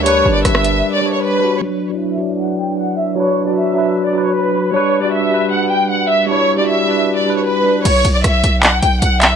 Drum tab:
CC |----------------|----------------|----------------|----------------|
HH |x---x-x---------|----------------|----------------|----------------|
CP |----------------|----------------|----------------|----------------|
SD |----rr----------|----------------|----------------|----------------|

CC |----------------|x---------------|
HH |----------------|x-x-x-x-x-x-x-x-|
CP |----------------|--------x-----x-|
SD |----------------|----r-----------|